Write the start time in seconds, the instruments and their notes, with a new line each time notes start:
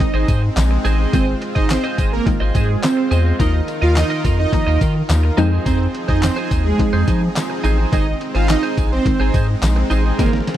Already playing: supersaw synth G#3 C4 D#4 D#5
0.00 synth pluck D#3 G#3 C4 D#4, muted clean electric guitar stroke, kick, closed hi-hat, tambourine
0.14 analog synth bass G#1, clean electric guitar G#4 C5 D#5
0.28 analog synth bass G#2, clean electric guitar G#4 C5 D#5, kick, closed hi-hat, tambourine
0.42 muted clean electric guitar stroke
0.57 analog synth bass A#1, muted clean electric guitar stroke, snare, clap, closed hi-hat, tambourine
0.71 muted clean electric guitar stroke
0.85 analog synth bass A1, clean electric guitar G#4 C5 D#5, closed hi-hat, tambourine
0.99 clean electric guitar G#4 C5 D#5
1.13 analog synth bass G#1, synth pluck D#3 G#3 C4 F4, supersaw synth C4 F4 C5, clean electric guitar G#4 C5 D#5, kick, closed hi-hat, tambourine
1.27 muted clean electric guitar stroke
1.41 muted clean electric guitar stroke, closed hi-hat
1.55 analog synth bass G#1, supersaw synth D#4 D#5, clean electric guitar G#4 C5 D#5, kick, closed hi-hat
1.70 supersaw synth C4 C5, muted clean electric guitar stroke, snare, clap, closed hi-hat, tambourine
1.84 clean electric guitar G#4 C5 D#5, closed hi-hat
1.98 analog synth bass G#1, clean electric guitar G#4 C5 D#5, kick, closed hi-hat, tambourine
2.12 supersaw synth A#3 A#4, muted clean electric guitar stroke
2.26 synth pluck D#3 G#3 C4 D#4, muted clean electric guitar stroke, kick, closed hi-hat, tambourine
2.40 analog synth bass G#1, clean electric guitar G#4 C5 D#5
2.54 analog synth bass G#2, supersaw synth G#3 G#4, clean electric guitar G#4 C5 D#5, kick, closed hi-hat, tambourine
2.69 muted clean electric guitar stroke
2.83 supersaw synth C4 C5, muted clean electric guitar stroke, snare, clap, closed hi-hat, tambourine
2.97 muted clean electric guitar stroke
3.11 analog synth bass E2, clean electric guitar G#4 C5 D#5, closed hi-hat, tambourine
3.25 clean electric guitar G#4 C5 D#5
3.39 analog synth bass D#2, synth pluck D#3 F3 A#3 D#4, supersaw synth D#3 D#4 F4 A#4 D#5, clean electric guitar F4 A#4 D#5, kick, closed hi-hat, tambourine
3.54 muted clean electric guitar stroke
3.68 muted clean electric guitar stroke, closed hi-hat, tambourine
3.82 analog synth bass D#2, supersaw synth F4 F5, clean electric guitar F4 A#4 D#5, closed hi-hat
3.96 supersaw synth D#4 D#5, muted clean electric guitar stroke, snare, clap, closed hi-hat, tambourine
4.10 clean electric guitar F4 A#4 D#5, closed hi-hat
4.24 analog synth bass F2, clean electric guitar F4 A#4 D#5, kick, closed hi-hat, tambourine
4.39 supersaw synth D#4 D#5, muted clean electric guitar stroke
4.53 synth pluck D#3 F3 A#3 D#4, muted clean electric guitar stroke, kick, closed hi-hat, tambourine
4.67 analog synth bass D#2, clean electric guitar F4 A#4 D#5
4.81 analog synth bass D#3, clean electric guitar F4 A#4 D#5, kick, closed hi-hat, tambourine
4.95 muted clean electric guitar stroke
5.09 analog synth bass D#2, muted clean electric guitar stroke, snare, clap, closed hi-hat, tambourine
5.23 muted clean electric guitar stroke
5.37 analog synth bass F2, synth pluck F3 G#3 C4 D#4, supersaw synth F3 C4 D#4 G#4, clean electric guitar D#4 G#4 C5, closed hi-hat, tambourine
5.52 clean electric guitar D#4 G#4 C5
5.66 analog synth bass F2, supersaw synth C4 C5, clean electric guitar D#4 G#4 C5, kick, closed hi-hat, tambourine
5.80 muted clean electric guitar stroke
5.94 muted clean electric guitar stroke, closed hi-hat
6.08 analog synth bass F2, supersaw synth D#4 D#5, clean electric guitar D#4 G#4 C5, kick, closed hi-hat
6.22 supersaw synth C4 C5, muted clean electric guitar stroke, snare, clap, closed hi-hat, tambourine
6.36 clean electric guitar D#4 G#4 C5, closed hi-hat
6.51 analog synth bass D#2, clean electric guitar D#4 G#4 C5, kick, closed hi-hat, tambourine
6.65 supersaw synth G#3 G#4, muted clean electric guitar stroke
6.79 synth pluck F3 G#3 C4 D#4, muted clean electric guitar stroke, kick, closed hi-hat
6.93 analog synth bass F2, clean electric guitar D#4 G#4 C5
7.07 analog synth bass F3, clean electric guitar D#4 G#4 C5, kick, closed hi-hat, tambourine
7.21 muted clean electric guitar stroke
7.36 muted clean electric guitar stroke, snare, clap, closed hi-hat, tambourine
7.50 muted clean electric guitar stroke
7.64 analog synth bass A1, clean electric guitar D#4 G#4 C5, closed hi-hat, tambourine
7.78 clean electric guitar D#4 G#4 C5
7.92 analog synth bass G#1, synth pluck D#3 G#3 C4 D#4, supersaw synth G#3 D#4 D#5, clean electric guitar D#4 G#4 C5, kick, closed hi-hat, tambourine
8.06 muted clean electric guitar stroke
8.21 muted clean electric guitar stroke, closed hi-hat
8.35 analog synth bass G#1, clean electric guitar D#4 G#4 C5, supersaw synth F4 F5, closed hi-hat
8.49 supersaw synth D#4 D#5, muted clean electric guitar stroke, snare, clap, closed hi-hat, tambourine
8.63 clean electric guitar D#4 G#4 C5, closed hi-hat
8.77 analog synth bass A#1, clean electric guitar D#4 G#4 C5, kick, closed hi-hat, tambourine
8.91 supersaw synth C4 C5, muted clean electric guitar stroke
9.05 synth pluck D#3 G#3 C4 D#4, muted clean electric guitar stroke, kick, closed hi-hat, tambourine
9.20 analog synth bass G#1, clean electric guitar D#4 G#4 C5
9.34 analog synth bass G#2, clean electric guitar D#4 G#4 C5, kick, closed hi-hat, tambourine
9.48 muted clean electric guitar stroke
9.62 analog synth bass A#1, muted clean electric guitar stroke, snare, clap, closed hi-hat, tambourine
9.76 muted clean electric guitar stroke
9.90 analog synth bass A1, clean electric guitar D#4 G#4 C5, closed hi-hat, tambourine
10.04 clean electric guitar D#4 G#4 C5
10.19 analog synth bass G#1, synth pluck D#3 G#3 C4 D#4, supersaw synth A#3 F4 A#4, clean electric guitar D#4 G#4 C5, kick, snare, closed hi-hat, tambourine
10.26 snare
10.33 muted clean electric guitar stroke, snare
10.40 snare
10.47 muted clean electric guitar stroke, snare, closed hi-hat, tambourine